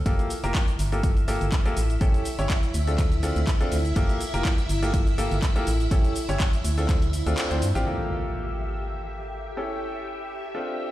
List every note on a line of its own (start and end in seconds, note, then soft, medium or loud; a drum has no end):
0.06 0.17 G1 loud
0.06 0.29 A#3 medium
0.06 7.87 E4 medium
0.06 0.29 F4 medium
0.06 0.29 G4 medium
0.06 0.29 A4 medium
0.06 7.85 E5 medium
0.06 kick loud
0.06 closed hi-hat medium
0.06 shaker soft
0.19 closed hi-hat soft
0.19 shaker soft
0.30 open hi-hat loud
0.30 shaker medium
0.44 0.53 F1 medium
0.44 0.57 A#3 medium
0.44 0.57 F4 medium
0.44 0.57 G4 medium
0.44 0.57 A#4 loud
0.44 closed hi-hat soft
0.44 shaker soft
0.55 kick loud
0.55 clap loud
0.55 closed hi-hat medium
0.55 shaker soft
0.68 closed hi-hat soft
0.68 shaker soft
0.79 1.38 G1 loud
0.79 open hi-hat loud
0.79 shaker medium
0.92 1.06 A#3 medium
0.92 1.06 F4 medium
0.92 1.06 G4 medium
0.92 1.06 A4 medium
0.92 closed hi-hat soft
0.92 shaker soft
1.03 kick loud
1.03 closed hi-hat medium
1.03 shaker soft
1.17 closed hi-hat soft
1.17 shaker soft
1.28 1.43 A#3 medium
1.28 1.43 F4 medium
1.28 1.43 G4 medium
1.28 1.43 A4 medium
1.28 open hi-hat loud
1.28 shaker medium
1.41 1.50 G1 loud
1.41 closed hi-hat soft
1.41 shaker soft
1.52 kick loud
1.52 clap loud
1.52 closed hi-hat medium
1.52 shaker soft
1.66 1.75 A#3 medium
1.66 1.75 F4 medium
1.66 1.75 G4 medium
1.66 1.75 A4 loud
1.66 closed hi-hat soft
1.66 shaker soft
1.77 1.97 A1 medium
1.77 open hi-hat loud
1.77 shaker medium
1.90 closed hi-hat soft
1.90 shaker soft
2.01 2.12 A1 medium
2.01 2.24 C#4 medium
2.01 2.24 E4 medium
2.01 2.24 G4 medium
2.01 2.24 A4 loud
2.01 kick loud
2.01 closed hi-hat medium
2.01 shaker soft
2.14 closed hi-hat soft
2.14 shaker soft
2.25 open hi-hat loud
2.25 shaker medium
2.39 2.48 G1 medium
2.39 2.52 C#4 medium
2.39 2.52 E4 medium
2.39 2.52 G4 medium
2.39 2.52 C#5 loud
2.39 closed hi-hat soft
2.39 shaker soft
2.50 kick medium
2.50 clap loud
2.50 closed hi-hat medium
2.50 shaker soft
2.63 closed hi-hat soft
2.63 shaker soft
2.74 3.33 D2 loud
2.74 open hi-hat loud
2.74 shaker medium
2.87 3.01 C4 medium
2.87 3.01 D4 medium
2.87 3.01 F4 medium
2.87 3.01 A4 medium
2.87 closed hi-hat soft
2.87 shaker soft
2.98 kick loud
2.98 clap medium
2.98 closed hi-hat medium
2.98 shaker soft
3.12 closed hi-hat soft
3.12 shaker soft
3.23 3.38 C4 medium
3.23 3.38 D4 medium
3.23 3.38 F4 medium
3.23 3.38 A4 medium
3.23 open hi-hat loud
3.23 shaker medium
3.36 3.45 D2 loud
3.36 closed hi-hat soft
3.36 shaker soft
3.47 kick loud
3.47 clap loud
3.47 closed hi-hat medium
3.47 shaker soft
3.61 3.74 C4 medium
3.61 3.74 D4 medium
3.61 3.74 F4 medium
3.61 3.74 A4 loud
3.61 closed hi-hat soft
3.61 shaker soft
3.72 3.92 D2 medium
3.72 open hi-hat medium
3.72 shaker medium
3.85 closed hi-hat soft
3.85 shaker soft
3.96 4.07 G1 loud
3.96 4.19 A#3 medium
3.96 4.19 F4 medium
3.96 4.19 G4 medium
3.96 4.19 A4 loud
3.96 kick loud
3.96 closed hi-hat medium
3.96 shaker soft
4.09 closed hi-hat soft
4.09 shaker soft
4.21 open hi-hat loud
4.21 shaker medium
4.34 4.43 F1 medium
4.34 4.47 A#3 medium
4.34 4.47 F4 medium
4.34 4.47 G4 medium
4.34 4.47 A#4 loud
4.34 closed hi-hat soft
4.34 shaker soft
4.45 kick loud
4.45 clap loud
4.45 closed hi-hat loud
4.45 shaker soft
4.58 closed hi-hat soft
4.58 shaker soft
4.69 5.28 G1 medium
4.69 open hi-hat loud
4.69 shaker medium
4.83 4.96 A#3 medium
4.83 4.96 F4 medium
4.83 4.96 G4 medium
4.83 4.96 A4 medium
4.83 closed hi-hat soft
4.83 shaker soft
4.94 kick loud
4.94 closed hi-hat medium
4.94 shaker soft
5.07 closed hi-hat soft
5.07 shaker soft
5.18 5.33 A#3 medium
5.18 5.33 F4 medium
5.18 5.33 G4 medium
5.18 5.33 A4 loud
5.18 open hi-hat loud
5.18 shaker medium
5.31 5.41 G1 loud
5.31 closed hi-hat soft
5.31 shaker soft
5.42 kick loud
5.42 clap loud
5.42 closed hi-hat loud
5.42 shaker soft
5.56 5.65 A#3 medium
5.56 5.65 F4 medium
5.56 5.65 G4 medium
5.56 5.65 A4 loud
5.56 closed hi-hat soft
5.56 shaker soft
5.67 5.88 A1 medium
5.67 open hi-hat medium
5.67 shaker medium
5.80 closed hi-hat soft
5.80 shaker soft
5.91 6.02 A1 loud
5.91 6.14 C#4 medium
5.91 6.15 E4 medium
5.91 6.15 G4 medium
5.91 6.15 A4 loud
5.91 kick loud
5.91 closed hi-hat medium
5.91 shaker soft
6.05 closed hi-hat soft
6.05 shaker soft
6.16 open hi-hat loud
6.16 shaker medium
6.29 6.38 G1 medium
6.29 6.42 C#4 medium
6.29 6.42 E4 medium
6.29 6.42 G4 medium
6.29 6.42 C#5 loud
6.29 closed hi-hat soft
6.29 shaker soft
6.40 kick loud
6.40 clap loud
6.40 closed hi-hat loud
6.40 shaker soft
6.53 closed hi-hat soft
6.53 shaker soft
6.64 7.23 D2 medium
6.64 open hi-hat loud
6.64 shaker medium
6.78 6.91 C4 medium
6.78 6.91 D4 medium
6.78 6.91 F4 medium
6.78 6.91 A4 medium
6.78 closed hi-hat soft
6.78 shaker soft
6.89 kick loud
6.89 clap medium
6.89 closed hi-hat loud
6.89 shaker soft
7.02 closed hi-hat soft
7.02 shaker soft
7.13 open hi-hat loud
7.13 shaker medium
7.26 7.36 D2 loud
7.26 7.48 C4 medium
7.26 7.48 D4 medium
7.26 7.48 F4 medium
7.26 7.48 A4 medium
7.26 closed hi-hat soft
7.26 shaker soft
7.38 clap loud
7.38 closed hi-hat medium
7.38 shaker soft
7.51 7.63 D2 medium
7.51 7.64 C4 medium
7.51 7.64 D4 medium
7.51 7.64 F4 medium
7.51 7.64 C5 medium
7.51 closed hi-hat soft
7.51 shaker soft
7.62 7.73 G2 medium
7.62 open hi-hat medium
7.62 shaker medium
7.75 7.84 A1 loud
7.75 7.85 C4 loud
7.75 7.85 D4 medium
7.75 7.85 F4 medium
7.75 7.85 G4 loud
7.75 closed hi-hat soft
7.75 shaker soft
7.86 9.54 A#3 medium
7.86 9.54 F4 medium
7.86 9.54 G4 medium
7.86 10.91 G4 medium
7.86 9.54 A4 medium
7.86 10.91 E5 medium
7.86 impact medium
9.57 10.52 C#4 medium
9.57 10.52 E4 medium
9.57 10.52 G4 medium
9.57 10.52 A4 medium
10.55 10.91 C4 medium
10.55 10.91 D4 medium
10.55 10.91 F4 medium
10.55 10.91 A4 medium